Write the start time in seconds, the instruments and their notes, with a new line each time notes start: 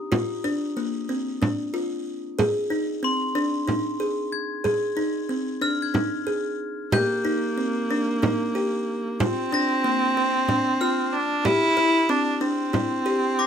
Already playing: glockenspiel A#5 D#6
0.12 kalimba F4, frame drum
0.44 kalimba D4, frame drum
0.77 kalimba A#3
1.09 kalimba C4
1.42 kalimba D4, frame drum
1.74 kalimba F4
2.39 kalimba G#4, frame drum
2.70 kalimba D#4, frame drum
3.03 kalimba C4, glockenspiel C6
3.35 kalimba D4
3.67 kalimba D#4, frame drum
4.00 kalimba G#4
4.32 glockenspiel G#6
4.64 kalimba G#4, frame drum
4.97 kalimba D#4, frame drum
5.29 kalimba C4
5.61 kalimba D4, glockenspiel F6, frame drum
5.82 glockenspiel G#6
5.94 kalimba D#4, frame drum
6.27 kalimba G#4, frame drum
6.92 viola A#3, kalimba G4, glockenspiel G6, frame drum
7.25 kalimba D#4, frame drum
7.58 kalimba C4
7.91 kalimba D4
8.22 kalimba D#4, frame drum
8.55 kalimba G4
9.20 viola C4, kalimba F4, frame drum
9.52 kalimba D4, glockenspiel A#6, frame drum
9.84 kalimba A#3
10.17 kalimba C4
10.48 kalimba D4, frame drum
10.81 kalimba F4, glockenspiel F6
11.13 viola D4
11.45 viola E4, kalimba G4, frame drum
11.77 kalimba E4, frame drum
12.09 kalimba C4, viola D4
12.41 viola C4, kalimba D4
12.73 kalimba E4, frame drum
13.06 kalimba G4
13.39 glockenspiel D6 A#6